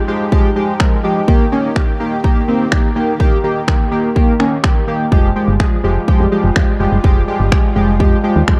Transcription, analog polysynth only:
0.08 0.25 F3 medium
0.08 0.26 G#3 medium
0.08 0.26 G4 loud
0.32 0.49 F3 loud
0.32 0.50 G#3 loud
0.32 0.50 G4 loud
0.56 0.73 F3 medium
0.56 0.74 G#3 medium
0.56 0.74 G4 loud
0.80 0.97 F3 medium
0.80 0.98 G#3 medium
0.80 0.98 A#4 loud
1.04 1.21 F3 medium
1.04 1.22 G#3 medium
1.04 1.22 G4 loud
1.28 1.45 D#3 loud
1.28 1.46 A#3 loud
1.28 1.46 G4 loud
1.52 1.69 D#3 medium
1.52 1.70 A#3 medium
1.52 1.70 C#4 loud
1.76 1.93 D#3 medium
1.76 1.94 A#3 medium
1.76 1.94 G4 loud
2.00 2.17 D#3 medium
2.00 2.18 A#3 medium
2.00 2.18 G4 loud
2.24 2.41 D#3 loud
2.24 2.42 A#3 loud
2.24 2.42 G4 loud
2.48 2.65 D#3 medium
2.48 2.66 A#3 medium
2.48 2.66 C4 loud
2.72 2.89 D#3 medium
2.72 2.90 A#3 medium
2.72 2.90 G4 medium
2.96 3.13 D#3 medium
2.96 3.14 A#3 medium
2.96 3.14 G4 loud
3.20 3.37 D#3 loud
3.20 3.38 A#3 loud
3.20 3.38 G4 loud
3.44 3.61 D#3 medium
3.44 3.61 A#3 medium
3.44 3.62 G4 loud
3.68 3.85 D#3 medium
3.68 3.85 A#3 medium
3.68 3.86 G4 medium
3.91 4.09 D#3 medium
3.91 4.09 A#3 medium
3.91 4.09 G4 loud
4.15 4.33 D#3 loud
4.15 4.33 A#3 loud
4.15 4.34 G4 loud
4.39 4.57 D#3 medium
4.39 4.57 A#3 medium
4.39 4.58 C#4 loud
4.63 4.81 D#3 medium
4.63 4.81 A#3 medium
4.63 4.82 G4 loud
4.88 5.05 D#3 medium
4.88 5.05 A#3 medium
4.88 5.06 G4 loud
5.12 5.29 F3 loud
5.12 5.29 G#3 loud
5.12 5.30 G4 loud
5.36 5.53 F3 medium
5.36 5.54 G#3 medium
5.36 5.54 G4 medium
5.60 5.77 F3 medium
5.60 5.77 G#3 medium
5.60 5.78 G#4 medium
5.84 6.01 F3 medium
5.84 6.02 G#3 medium
5.84 6.02 G4 loud
6.08 6.25 F3 loud
6.08 6.26 G#3 loud
6.08 6.26 G4 loud
6.32 6.49 F3 medium
6.32 6.49 G#3 medium
6.32 6.50 G4 loud
6.56 6.73 F3 medium
6.56 6.74 G#3 medium
6.56 6.74 G4 loud
6.80 6.97 F3 medium
6.80 6.98 G#3 medium
6.80 6.98 G4 loud
7.04 7.21 F3 loud
7.04 7.21 G#3 loud
7.04 7.22 G4 loud
7.28 7.45 F3 medium
7.28 7.46 G#3 medium
7.28 7.46 G4 loud
7.51 7.69 F3 medium
7.51 7.69 G#3 medium
7.51 7.70 G4 medium
7.76 7.93 F3 medium
7.76 7.93 G#3 medium
7.76 7.94 G4 loud
8.00 8.17 F3 loud
8.00 8.17 G#3 loud
8.00 8.18 G4 loud
8.24 8.41 F3 medium
8.24 8.41 G#3 medium
8.24 8.42 G4 loud
8.48 8.60 F3 medium
8.48 8.60 G#3 medium
8.48 8.60 G4 loud

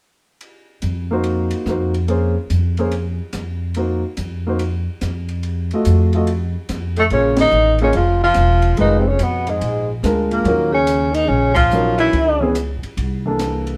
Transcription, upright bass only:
0.83 1.51 F2 medium
1.66 2.35 F2 medium
2.50 3.19 F2 medium
3.33 4.02 F2 medium
4.18 4.86 F2 medium
5.02 5.70 F2 medium
5.86 6.54 F2 medium
6.69 7.08 F2 medium
7.10 7.50 A#1 medium
7.52 7.91 A1 medium
7.94 8.33 F1 medium
8.36 8.75 E1 medium
8.78 9.17 F1 medium
9.19 9.59 F2 medium
9.61 10.00 A#1 medium
10.03 10.42 D2 medium
10.44 11.25 D#2 medium
11.29 12.08 A#1 medium
12.13 12.78 C#2 medium
12.83 muted upright bass stroke soft
12.97 13.76 C2 medium

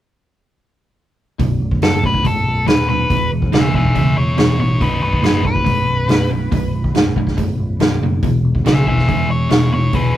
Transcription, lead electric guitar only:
1.83 2.03 A4 medium
2.06 2.25 B4 medium
2.26 2.67 A4 medium
2.68 2.88 B4 medium
2.89 3.30 B4 medium
3.54 3.74 G#4 medium
3.54 3.74 E5 medium
3.75 3.94 G#4 medium
3.75 3.95 E5 medium
3.95 4.15 G#4 medium
3.95 4.16 E5 medium
4.17 4.36 E4 medium
4.17 4.37 C#5 medium
4.38 4.58 E4 medium
4.38 4.59 C#5 medium
4.60 4.79 E4 medium
4.60 4.81 C#5 medium
4.81 5.01 D#4 medium
4.81 5.01 B4 medium
5.02 5.22 D#4 medium
5.02 5.23 B4 medium
5.24 5.43 D#4 medium
5.24 5.45 B4 medium
5.47 6.29 B4 medium
8.67 8.87 G#4 medium
8.67 8.87 E5 medium
8.88 9.07 G#4 medium
8.88 9.08 E5 medium
9.09 9.28 G#4 medium
9.09 9.29 E5 medium
9.30 9.50 E4 medium
9.30 9.50 C#5 medium
9.51 9.71 E4 medium
9.51 9.72 C#5 medium
9.72 9.92 E4 medium
9.72 9.94 C#5 medium
9.94 10.13 G#4 medium
9.94 10.15 B4 medium

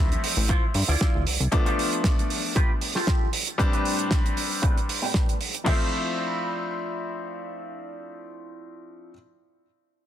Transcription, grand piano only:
0.00 0.85 F3 medium
0.00 0.85 A3 medium
0.00 0.86 C4 medium
0.00 0.86 E5 medium
1.52 2.92 F3 medium
1.52 2.92 A3 medium
1.52 2.93 B3 medium
1.52 2.93 D4 medium
3.58 4.99 G3 medium
3.58 4.99 C4 medium
3.58 5.00 D4 medium
3.58 4.99 B4 medium
5.64 9.10 F3 medium
5.64 9.11 A3 medium
5.64 9.12 C4 medium
5.64 9.13 E5 medium

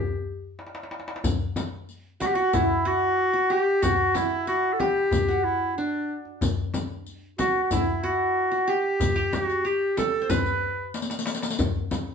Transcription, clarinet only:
0.00 0.59 G4 loud
2.21 2.28 F#4 medium
2.26 2.36 G4 medium
2.35 2.56 F#4 medium
2.54 2.88 E4 medium
2.87 3.53 F#4 loud
3.52 3.85 G4 medium
3.83 4.18 F#4 medium
4.16 4.47 E4 medium
4.48 4.75 F#4 medium
4.73 4.81 A4 medium
4.80 5.45 G4 medium
5.44 5.76 E4 medium
5.77 6.22 D4 medium
7.39 7.62 F#4 medium
7.63 7.74 F#4 medium
7.72 8.05 E4 medium
8.04 8.71 F#4 medium
8.70 9.36 G4 medium
9.34 9.68 F#4 medium
9.67 9.98 G4 medium
9.99 10.32 A4 medium
10.30 10.95 B4 medium

